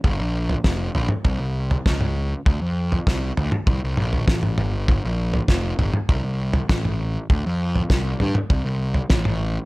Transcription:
<<
  \new Staff \with { instrumentName = "Picked electric bass" } { \clef bass \time 4/4 \key g \minor \tempo 4 = 99 g,,16 bes,,8. f,,8 bes,,16 r16 c,16 c,8. cis,4 | d,16 f,8. c,8 d,16 r16 c,16 c,16 bes,,8 a,,8 g,,8 | g,,16 bes,,8. f,,8 g,,16 r16 c,16 c,8. a,,4 | d,16 f,8. c,8 g,16 r16 c,16 c,8. a,,4 | }
  \new DrumStaff \with { instrumentName = "Drums" } \drummode { \time 4/4 <bd tomfh>8. tomfh16 <bd sn>8 tomfh16 toml16 <bd tomfh>8. tomfh16 <bd sn>16 toml8. | <bd tomfh>8. tomfh16 <bd sn>8 tomfh16 toml16 <bd tomfh>8 toml16 tomfh16 <bd sn>16 toml16 toml8 | <bd tomfh>8. tomfh16 <bd sn>8 tomfh16 toml16 <bd tomfh>8. tomfh16 <bd sn>16 toml8. | <bd tomfh>8. tomfh16 <bd sn>8 tomfh16 toml16 <bd tomfh>8. tomfh16 <bd sn>16 toml8. | }
>>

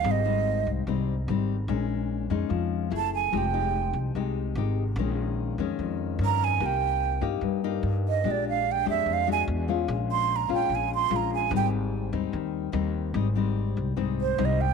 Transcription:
<<
  \new Staff \with { instrumentName = "Flute" } { \time 4/4 \key bes \dorian \tempo 4 = 147 ees''4. r2 r8 | r2. a''8 aes''8 | g''4. r2 r8 | r2. bes''8 aes''8 |
g''4. r2 ees''8 | d''8 f''8 g''8 e''8 f''8 aes''8 r4 | r8 c'''8 bes''8 g''8 aes''8 c'''8 bes''8 aes''8 | g''8 r2. r8 |
r2 r8 c''8 ees''8 g''8 | }
  \new Staff \with { instrumentName = "Nylon-string guitar" } { \time 4/4 \key bes \dorian << { <g c' ees'>8 <g c' ees'>4. <g c' ees'>8 r8 <g c' ees'>8 r8 | <aes des' ees'>4. <aes des' ees'>4. <a fes' aes'>4 | <aes ees' g'>8 <aes ees' g'>4. <aes ees' g'>4 <aes ees' g'>8 r8 | <ees aes des'>4. <ees aes des'>4. <ees des'>4 |
<bes ees' g'>4. <bes ees' g'>4 <bes ees' g'>4. | <aes d' g'>4. <aes d' g'>4 <aes d' ges'>4 <gis des' f'>8~ | <gis des' f'>4. <aes des' f'>4. <aes des' f'>4 | <g c' ees'>4. <g c' ees'>4. <g c' ees'>4 |
<g c' ees'>8 <g c' ees'>4. <g c' ees'>4 <g c' ees'>8 r8 | } \\ { aes,2 aes,2 | bes,2 f4 r4 | f2 c2 | bes,2 f,2 |
c2 g,2 | bes,2 f,4 r4 | bes,2 bes,2 | aes,2 ees2 |
aes,2 aes,2 | } >> }
  \new Staff \with { instrumentName = "Upright bass" } { \clef bass \time 4/4 \key bes \dorian aes,,4. c,8 c,4 aes,,4 | bes,,4. f,8 f,4 ges,,4 | f,,4. c,8 c,4 aes,,4 | bes,,4. f,8 f,4 g,4 |
c,4. g,8 g,4 g,4 | bes,,4. f,8 f,4 e,4 | bes,,4. bes,,8 bes,,4 bes,,4 | aes,,4. ees,8 ees,4 ees,4 |
aes,,4. c,8 c,4 c,4 | }
>>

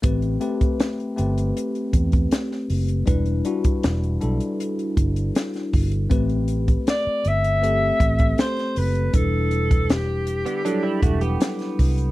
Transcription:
<<
  \new Staff \with { instrumentName = "Alto saxophone" } { \time 4/4 \key a \dorian \tempo 4 = 79 r1 | r1 | r4 d''8 e''4. c''8 b'8 | a'4 g'2 r4 | }
  \new Staff \with { instrumentName = "Tine electric piano" } { \time 4/4 \key a \dorian <a c' g' b'>8 <a c' g' b'>4 <a c' g' b'>2 r8 | <g d' e' b'>8 <g d' e' fis'>4 <g d' e' a'>2 r8 | <a c' g' b'>2 <a c' g' a'>2 | <g d' e' b'>2 <fis g d' e' a'>2 | }
  \new Staff \with { instrumentName = "Clean electric guitar" } { \time 4/4 \key a \dorian r1 | r1 | r1 | r4. r16 <d b>16 <fis d'>16 <g e'>16 <a fis'>16 <b g'>4~ <b g'>16 | }
  \new Staff \with { instrumentName = "Fingered electric bass" } { \clef bass \time 4/4 \key a \dorian a,,8 r4 g,,8 r8 e,8 r8 fis,,8 | e,,8 r8 e,,8 b,,16 r8. g,,8 r8 g,,8 | a,,4 r8 g,,4 a,,8 r8 fis,,8 | e,,4.~ e,,16 r8. e,,8 r8 c,8 | }
  \new DrumStaff \with { instrumentName = "Drums" } \drummode { \time 4/4 <hh bd>16 hh16 hh16 <hh bd>16 <hh sn>16 hh16 hh16 hh16 hh16 hh16 <hh bd>16 <hh bd>16 <hh sn>16 sn16 hho16 hh16 | <hh bd>16 hh16 hh16 <hh bd>16 <hh sn>16 hh16 hh16 hh16 hh16 hh16 <hh bd>16 hh16 <hh sn>16 <hh sn>16 <hho bd>16 hh16 | <hh bd>16 hh16 hh16 <hh bd>16 <hh sn>8 hh16 hh16 hh8 <hh bd>16 <hh bd>16 <hh sn>16 <hh sn>16 hho16 hh16 | <hh bd>8 hh16 <hh bd>16 <hh sn>8 hh16 hh16 hh8 <hh bd>16 hh16 <hh sn>16 <hh sn>16 <hho bd>16 hh16 | }
>>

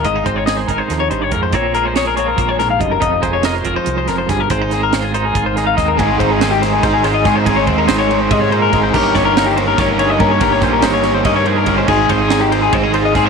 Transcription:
<<
  \new Staff \with { instrumentName = "Clean electric guitar" } { \time 7/8 \key aes \major \tempo 4 = 142 ees''8 c''16 des''16 ees''16 c''16 bes'16 c''8 des''16 c''16 des''16 bes'16 c''16 | des''8 bes'16 c''16 des''16 bes'16 des''16 bes'8 des''16 bes'16 f''16 ees''16 bes'16 | ees''8 c''16 des''16 ees''16 c''16 bes'16 c''8 c''16 bes'16 c''16 aes'16 bes'16 | c''8 aes'16 bes'16 c''16 aes'16 c''16 aes'8 c''16 aes'16 f''16 ees''16 bes'16 |
aes'8 c''16 aes'8 g'16 c''16 aes'16 c''16 aes'16 c''16 ees''16 aes'16 c''16 | aes'16 des''16 c''16 bes'16 c''16 des''8 c''16 ees''16 des''16 c''16 bes'8 c''16 | bes'8 des''16 bes'8 g'16 c''16 bes'16 des''16 bes'16 des''16 ees''16 bes'16 des''16 | bes'16 des''16 c''16 bes'16 c''16 des''8 c''16 ees''16 des''16 c''16 bes'8 c''16 |
aes'8 c''16 aes'8 g'16 c''16 aes'16 c''16 aes'16 c''16 ees''16 aes'16 c''16 | }
  \new Staff \with { instrumentName = "Overdriven electric guitar" } { \time 7/8 \key aes \major r2. r8 | r2. r8 | r2. r8 | r2. r8 |
<aes c' ees' aes' c''>4 <c' ees' aes' c''>8 <ees' aes' c''>4. <aes c' ees' aes' c''>8 | <aes c' ees' aes' c''>4 <c' ees' aes' c''>8 <ees' aes' c''>4. <aes c' ees' aes' c''>8 | <g bes ees' bes' des''>4 <bes ees' bes' des''>8 <ees' bes' des''>4. <g bes ees' bes' des''>8 | <g bes ees' bes' des''>4 <bes ees' bes' des''>8 <ees' bes' des''>4. <g bes ees' bes' des''>8 |
<aes c' ees' aes' c''>4 <c' ees' aes' c''>8 <ees' aes' c''>4. <aes c' ees' aes' c''>8 | }
  \new Staff \with { instrumentName = "Clean electric guitar" } { \time 7/8 \key aes \major << { <c' f'>16 ees'16 c'8 aes'8 ees'2 | c'8 aes8 aes'8 c'2 | ees'8 aes8 bes'8 c'16 ees'4.~ ees'16 | c'16 ees'16 c'8 f'8 ees'8 f'8 ees'8 c'8 |
r8 ees'8 c'4 ees'8 f'8 ees'8 | r8 c'16 ees'16 c'2~ c'8 | g'8 des'8 bes4 des'8 aes'8 des'8 | g'8 des'8 bes4 des'8 aes'8 des'8 |
r8 ees'8 c'4 c'16 ees'16 f'8 c'16 r16 | } \\ { <aes, ees aes>4. ees8 f,8 g,8 aes,8 | bes,4. f8 bes,8 aes,8 g,8 | f,4. f4 f,8 g,8 | aes,4. ees4. aes,8 |
aes,4 ees4. aes,4 | aes,4 ees4 c8 bes,8 aes,8 | g,4 ees4. g,4 | g,4 ees4. g,4 |
aes,4 ees4. aes,4 | } >> }
  \new Staff \with { instrumentName = "Fingered electric bass" } { \clef bass \time 7/8 \key aes \major aes,,8 aes,,4 aes,,16 r16 ees,8 aes,,8 f,8 | bes,,2 bes,,4 ges,,8 | f,,8 f,,4 f,,16 r16 c,8 f,,8 g,,8 | aes,,2 aes,,4 ees,8 |
aes,,8 aes,,4. aes,,4 aes,8 | aes,,8 ees,8 aes,,4 aes,4 aes,,8 | g,,8 g,,4. g,,4 g,8 | g,,8 bes,,8 g,,4 g,4 g,,8 |
aes,,8 aes,,4. aes,,4 aes,8 | }
  \new DrumStaff \with { instrumentName = "Drums" } \drummode { \time 7/8 <hh bd>8 <hh bd>8 <hh sn>8 <hh bd>8 <hh sn>8 hh8 <hh bd>8 | <hh bd>8 hh8 <hh sn>8 hh8 <hh bd>8 <hh sn>8 <hh bd>8 | <hh bd>8 <hh bd>8 <hh sn>8 <hh bd>8 hh8 <hh sn>8 <hh bd sn>8 | <hh bd>8 <hh sn>8 <hh sn>8 hh8 <hh bd>8 <hh sn>8 <hh bd sn>8 |
<bd cymr>8 <bd cymr>8 <cymr sn>8 <cymr sn>8 <bd cymr sn>8 <cymr sn>8 <bd cymr sn>8 | <bd cymr>8 <bd cymr>8 <cymr sn>8 cymr8 <bd cymr>8 cymr8 <bd cymr>8 | <cymc bd>8 <bd cymr sn>8 <cymr sn>8 cymr8 <bd cymr sn>8 cymr8 <bd cymr>8 | <bd cymr>8 <bd cymr sn>8 <cymr sn>8 <cymr sn>8 <bd cymr>8 cymr8 <bd cymr>8 |
<cymc bd>8 <bd cymr>8 <cymr sn>8 cymr8 <bd cymr>8 cymr8 <bd cymr sn>8 | }
>>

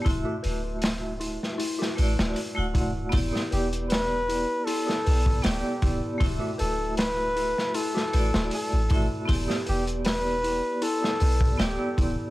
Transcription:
<<
  \new Staff \with { instrumentName = "Muted trumpet" } { \time 4/4 \key e \minor \tempo 4 = 78 r1 | r8 g'8 b'4 a'4 g'8. r16 | r8 a'8 b'4 a'4 a'8. r16 | r8 g'8 b'4 a'4 g'8. r16 | }
  \new Staff \with { instrumentName = "Synth bell" } { \time 4/4 \key e \minor e'16 fis'16 b'4 e'16 r16 e'16 fis'16 b'4 e'16 r16 | e'16 g'16 b'4 e'16 r16 e'16 g'16 b'4 e'16 r16 | e'16 fis'16 b'4 e'16 r16 e'16 fis'16 b'4 e'16 r16 | e'16 g'16 b'4 e'16 r16 e'16 g'16 b'4 e'16 r16 | }
  \new Staff \with { instrumentName = "Vibraphone" } { \time 4/4 \key e \minor <a e' fis' e''>2~ <a e' fis' e''>8 <a e' fis' d''>8. <a e' fis' fis''>8. | <b e' g' d''>2. <b e' g' d''>4 | <a e' fis' e''>2~ <a e' fis' e''>8 <a e' fis' d''>4 <a e' fis' e''>16 r16 | <b e' g' d''>2. <b e' g' d''>4 | }
  \new Staff \with { instrumentName = "808-style bass" } { \clef bass \time 4/4 \key e \minor d,,16 r16 d,,4~ d,,16 r8. a,,16 d,,16 r16 d,,8. | e,,16 r16 e,,4~ e,,16 r8. b,,8 d,,16 r16 d,,16 r16 | d,,16 r16 d,,4~ d,,16 r8. a,,16 d,,16 r16 a,,16 a,,16 r16 | e,,16 r16 e,,4~ e,,16 r8. b,,8 d,,16 r16 d,,16 r16 | }
  \new DrumStaff \with { instrumentName = "Drums" } \drummode { \time 4/4 <hho bd>8 hho8 <hho sn>8 hho16 sn16 hho16 sn16 hho16 sn16 hho8 <hho bd>8 | <hho bd>16 sn16 hho16 hh16 <hho sn>8 hho8 hho16 sn16 hho16 bd16 <hho sn>8 <hho bd>8 | <hho bd>8 hho8 <hho sn>8 hho16 sn16 hho16 sn16 hho16 sn16 hho8 <hho bd>8 | <hho bd>16 sn16 hho16 hh16 <hho sn>8 hho8 hho16 sn16 hho16 bd16 <hho sn>8 <hho bd>8 | }
>>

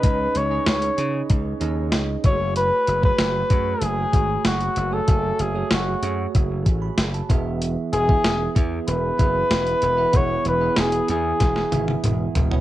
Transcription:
<<
  \new Staff \with { instrumentName = "Flugelhorn" } { \time 4/4 \key e \major \tempo 4 = 95 b'8 cis''8 cis''4 r4. cis''8 | b'8. b'4~ b'16 gis'4 fis'8. a'16~ | a'8 gis'8 fis'4 r2 | r8 gis'4 r8 b'2 |
cis''8 b'8 gis'8 gis'4. r4 | }
  \new Staff \with { instrumentName = "Tine electric piano" } { \time 4/4 \key e \major << { r1 | r1 | r2 r8 gis''16 b''8 a''8 r16 | r1 |
r1 | } \\ { <cis' dis' gis' dis''>8. <cis' dis' gis' dis''>8. <cis' dis' gis' dis''>8. r16 <cis' dis' gis' dis''>4 <gis a fis' gis' cis''>8~ | <gis a fis' gis' cis''>8 r16 <a fis' gis' cis''>8. <a fis' gis' cis''>8. r16 <a fis' gis' cis''>4 r16 <a fis' gis' cis''>16 | <a fis' e'' gis''>8. <a fis' gis' cis''>8. <a fis' gis' cis''>8. r4 r16 <b e' gis' e''>8~ | <b e' gis' e''>8 r16 <b e' gis' e''>8. <b e' gis' e''>8. r16 <b e' gis' e''>4 r16 <b e' gis' e''>16 |
<b e' gis' fis''>8. <b e' gis' e''>8. <b e' gis' e''>8. r16 <b e' gis' e''>4 r16 <b e' gis' cis''>16 | } >> }
  \new Staff \with { instrumentName = "Tine electric piano" } { \clef bass \time 4/4 \key e \major cis4 r2. | r1 | r2. r8 e8~ | e4 r2 r8 e8~ |
e4 r2. | }
  \new Staff \with { instrumentName = "Slap bass" } { \clef bass \time 4/4 \key e \major cis,8 cis,8 cis,8 cis8 cis,8 dis,8 cis,8 fis,,8~ | fis,,8 fis,,8 fis,,8 fis,8 fis,,8 gis,,8 fis,,8 fis,,8 | fis,,8 fis,,8 fis,,8 fis,8 fis,,8 a,,8 fis,,8 e,,8~ | e,,8 e,,8 e,,8 e,8 e,,8 fis,,8 e,,8 e,,8 |
e,,8 e,,8 e,,8 e,8 e,,8 gis,,8 e,,8 e,,8 | }
  \new DrumStaff \with { instrumentName = "Drums" } \drummode { \time 4/4 <hh bd>8 hh8 <hh sn>16 hh16 hh8 <hh bd>8 hh8 <hh sn>8 <hh bd>8 | hh8 hh16 bd16 <hh sn>8 <hh bd>8 hh8 <hh bd>8 <hh sn>16 hh16 hh8 | <hh bd>8 hh8 <hh sn>8 hh8 <hh bd>8 <hh bd>8 <hh sn>16 hh16 <hh bd>8 | hh8 hh16 bd16 <hh sn>8 <hh bd>8 hh8 <hh bd>8 <hh sn>16 hh16 hh8 |
<hh bd>8 hh8 <hh sn>16 hh16 hh8 <hh bd sn>16 sn16 <hh tommh>16 tommh16 <hh toml>8 <hh tomfh>16 tomfh16 | }
>>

